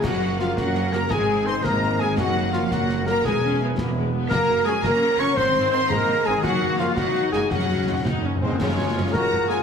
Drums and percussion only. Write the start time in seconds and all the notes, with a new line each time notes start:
0.04 concert bass drum, snare, crash
0.39 snare
0.57 concert bass drum, snare
0.75 snare
0.93 snare
1.10 concert bass drum, snare
1.64 concert bass drum, snare
2.17 concert bass drum, snare, crash
2.53 snare
2.71 concert bass drum, snare
2.89 snare
3.07 snare
3.24 concert bass drum, snare
3.78 concert bass drum, snare
4.31 concert bass drum, snare, crash
4.66 snare
4.84 concert bass drum, snare
5.02 snare
5.19 snare
5.37 concert bass drum, snare
5.90 concert bass drum, snare
6.43 concert bass drum, snare, crash
6.79 snare
6.96 concert bass drum, snare
7.15 snare
7.33 snare
7.50 concert bass drum, snare
8.05 concert bass drum, snare
8.60 concert bass drum, snare, crash
9.14 concert bass drum, snare
9.50 snare